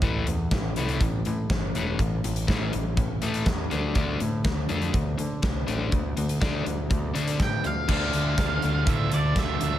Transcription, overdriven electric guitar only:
\new Staff \with { instrumentName = "Overdriven electric guitar" } { \clef bass \time 4/4 \key d \dorian \tempo 4 = 122 <a, e a>8 <a, e>8 <a, e>8 <a, e a>8 <a, e>8 <a, e>8 <a, e>8 <a, e a>8 | <a, e>8 <a, e>8 <a, e a>8 <a, e>8 <a, e>8 <a, e a>8 <a, e>8 <d a d'>8 | <d a d'>8 <d a>8 <d a>8 <d a d'>8 <d a>8 <d a>8 <d a>8 <d a d'>8 | <d a>8 <d a>8 <d a d'>8 <d a>8 <d a>8 <d a d'>8 <d a>8 <d a>8 |
<d a d'>1 | }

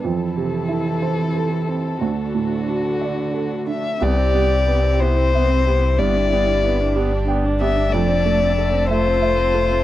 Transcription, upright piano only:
\new Staff \with { instrumentName = "Upright piano" } { \time 6/8 \key c \major \tempo 4. = 61 f,8 c8 e'8 c''8 a'8 c'8 | d,8 a,8 fis'8 d''8 a'8 d'8 | c,8 g8 b'8 g'8 e''8 g'8 | g,8 g8 b'8 g'8 g''8 g'8 |
f,8 a8 a'8 e''8 e''8 a'8 | }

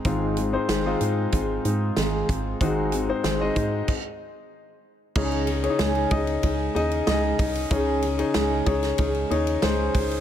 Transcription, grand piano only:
<<
  \new Staff \with { instrumentName = "Grand piano" } { \time 4/4 \key des \major \tempo 4 = 94 <aes c' ees' f'>8. <aes c' ees' c''>8 <aes c' ees' f'>2 r8. | <aes c' ees' ges'>8. <aes c' ees' c''>8 <aes c' ees' ees''>8. r2 | <ees' aes' des''>8. <des' ees' aes' des''>8. <ees' aes' ees''>4 <ees' aes' ees''>8 <ees' aes' ees''>4 | <ees' aes' des''>8. <ees' aes' des''>8. <ees' aes' des''>4 <ees' aes' des''>8 <ees' aes' c''>4 | }
  \new Staff \with { instrumentName = "Grand piano" } { \clef bass \time 4/4 \key des \major aes,4. r2 r8 | aes,4. r2 r8 | des4. r2 r8 | des4. r2 r8 | }
>>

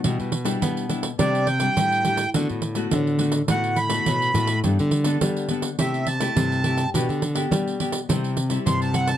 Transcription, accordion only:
\new Staff \with { instrumentName = "Accordion" } { \time 4/4 \key g \major \tempo 4 = 104 r2 d''8 g''4. | r2 fis''8 b''4. | r2 e''8 a''4. | r2. c'''16 a''16 fis''16 a''16 | }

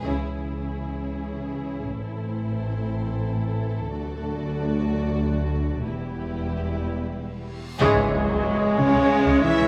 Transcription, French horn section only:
\new Staff \with { instrumentName = "French horn section" } { \time 6/8 \key cis \phrygian \tempo 4. = 62 << { cis'2. | c'2. | d'2. | b2~ b8 r8 |
gis4. cis'4 e'8 | } \\ { e2.~ | e2. | fis2. | g2~ g8 r8 |
r2. | } >> }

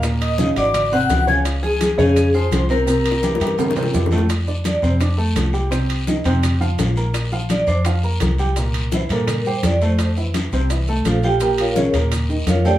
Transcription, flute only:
\new Staff \with { instrumentName = "Flute" } { \time 4/4 \key f \major \tempo 4 = 169 r8 ees'''4 d'''4 ges'''4 aes'''8 | r8 aes''4 aes''4 c'''4 bes''8~ | bes''2. r4 | r1 |
r1 | r1 | r1 | r1 |
r1 | }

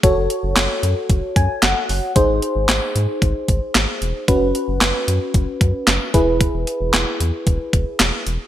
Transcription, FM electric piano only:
\new Staff \with { instrumentName = "FM electric piano" } { \time 4/4 \key e \major \tempo 4 = 113 << { r2 r8 gis''8 fis''4 | r1 | r1 | r1 | } \\ { <fis' a' cis''>1 | <dis' gis' bis'>1 | <cis' fis' b'>2.~ <cis' fis' b'>8 <e' gis' b'>8~ | <e' gis' b'>2.~ <e' gis' b'>8 r8 | } >> }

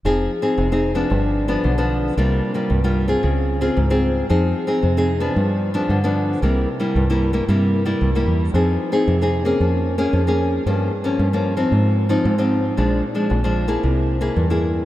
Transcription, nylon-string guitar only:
\new Staff \with { instrumentName = "Nylon-string guitar" } { \time 4/4 \key f \minor \tempo 4 = 113 << { <c' ees' aes'>8 r16 <c' ees' aes'>8 <c' ees' aes'>8 <f b d'>4 <f b d'>8 <f b d'>8. | <g bes f'>8. <g bes f'>8 <g bes f'>8 <c' f' aes'>4 <c' f' aes'>8 <c' f' aes'>8. | <c' ees' aes'>8. <c' ees' aes'>8 <c' ees' aes'>8 <f b d'>4 <f b d'>8 <f b d'>8. | <g bes e'>8 r16 <g bes e'>8 <g bes e'>8 <g bes e'>16 <g bes e'>8. <g bes e'>8 <g bes e'>8. |
<c' ees' aes'>8. <c' ees' aes'>8 <c' ees' aes'>8 <bes des' aes'>4 <bes des' aes'>8 <bes des' aes'>8. | <f bes des'>8 r16 <f bes des'>8 <f bes des'>8 <f c' ees'>4 <f c' ees'>8 <f c' ees'>8. | <f aes d'>8 r16 <f aes d'>8 <f aes d'>8 <bes e' aes'>4 <bes e' aes'>8 <bes e' aes'>8. | } \\ { f4 c4 g,4 d4 | c4 g,4 des4 aes,4 | f4 c4 g,4 d4 | c4 g,4 c4 g,4 |
f4 c4 f4 f4 | g,4 g,4 aes,4 aes,4 | bes,4 f,4 c4 g,4 | } >> }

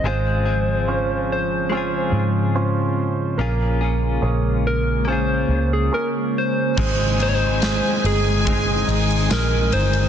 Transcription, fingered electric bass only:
\new Staff \with { instrumentName = "Fingered electric bass" } { \clef bass \time 4/4 \key aes \major \tempo 4 = 71 aes,,2~ aes,,8 aes,4. | bes,,4 bes,,4. des,8 r4 | aes,,4~ aes,,16 r16 g,,4 aes,,8 bes,,8 g,,8 | }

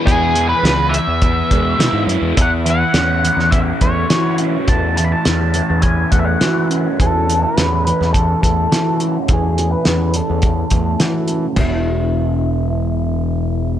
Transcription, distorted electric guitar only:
\new Staff \with { instrumentName = "Distorted electric guitar" } { \time 4/4 \key fis \dorian \tempo 4 = 104 <e gis b e'>8 e8 b8 e8 b8 gis8 e'8 b8 | e8 e8 cis'8 e8 cis'8 a8 fis'8 cis'8 | e8 e8 cis'8 e8 cis'8 a8 fis'8 cis'8 | e8 e8 cis'8 e8 cis'8 a8 fis'8 cis'8 |
e8 e8 cis'8 e8 cis'8 a8 fis'8 cis'8 | <e, b, e>1 | }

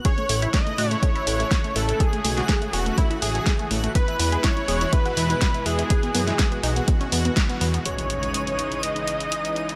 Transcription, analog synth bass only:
\new Staff \with { instrumentName = "Analog synth bass" } { \clef bass \time 4/4 \key cis \minor \tempo 4 = 123 r8 a,,8 r8 a,8 r8 a,,8 r8 a,,8 | r8 b,,8 r8 e,,8 r8 a,,8 r8 a,,8 | r8 e,8 r8 e,,8 r8 e,8 r8 e,8 | r8 fis,8 r8 b,,8 r8 e,8 r8 e,8 |
r1 | }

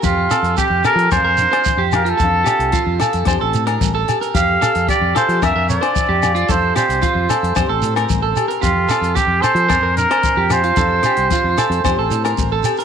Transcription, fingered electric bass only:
\new Staff \with { instrumentName = "Fingered electric bass" } { \clef bass \time 4/4 \key f \major \tempo 4 = 112 f,8 r16 f,16 r16 f,16 r16 f16 f,16 f,8 r8 f,8. | f,8 r16 c,16 r16 f,16 r16 f,16 f,16 a,,16 a,8 a,,8 r8 | f,8 r16 f,16 r16 f,16 r16 f16 f,16 f,8 r8 f,8. | f,8 r16 c,16 r16 f,16 r16 f,16 f,16 a,,16 a,8 a,,8 r8 |
f,8 r16 f,16 r16 f,16 r16 f16 f,16 f,8 r8 f,8. | f,8 r16 c,16 r16 f,16 r16 f,16 f,16 a,,16 a,8 a,,8 r8 | }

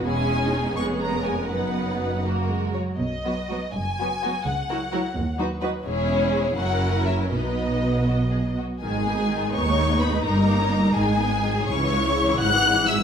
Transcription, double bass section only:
\new Staff \with { instrumentName = "Double bass section" } { \clef bass \time 6/8 \key b \major \tempo 4. = 83 e,,4. eis,,4. | fis,,2~ fis,,8 r8 | b,,4. fis,,4. | cis,4. dis,4. |
e,,4. fis,,4. | b,,2~ b,,8 r8 | \key gis \minor gis,,4. dis,4. | g,,4. gis,,4. |
cis,4. gis,,4. | }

